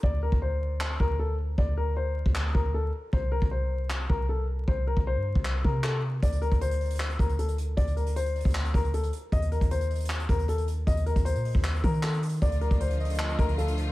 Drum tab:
HH |------------------------------------------------------------------------------------------------|------------------------------------------------------------------------------------------------|------------------------------------------------------------------------------------------------|------------------------------------------------------------------------------------------------|
CP |------------------------------------------------x-----------------------------------------------|------------------------------------------------x-----------------------------------------------|------------------------------------------------x-----------------------------------------------|------------------------------------------------x-----------------------x-----------------------|
BD |o-----------------o-----------------------------------------o-----------------------------------|o-----------------------------------------o-----------------o-----------------------------------|o-----------------o-----------------------------------------o-----------------------------------|o-----------------o-----------------------o-----------------o-----------------------------------|

HH |x-----x-----x-----x-----x-----x-----x--x--x--x--x-----x-----x-----x-----x-----x-----x-----------|x-----x-----x-----x-----x-----x-----x--x--x--x--x-----x-----x-----x-----x-----x-----x-----------|x-----x-----x-----x-----x-----x-----x--x--x--x--x-----x-----x-----x-----x-----x-----x-----------|x-----x-----x-----x-----x-----x-----o-----------x-----x-----x-----x-----x-----x-----x---x---x---|
CP |------------------------------------------------x-----------------------------------------------|------------------------------------------------x-----------------------------------------------|------------------------------------------------x-----------------------------------------------|------------------------------------------------x-----------------------x-----------------------|
BD |o-----------------o-----------------------------------------o-----------------------------------|o-----------------------------------------o-----------------o-----------------------------------|o-----------------o-----------------------------------------o-----------------------------------|o-----------------o-----------------------o-----------------o-----------------------------------|

HH |x-----x-----x-----x-----x-----x-----x--x--x--x--x-----x-----x-----x-----x-----x-----x-----------|
CP |------------------------------------------------x-----------------------------------------------|
BD |o-----------------o-----------------------------------------o-----------------------------------|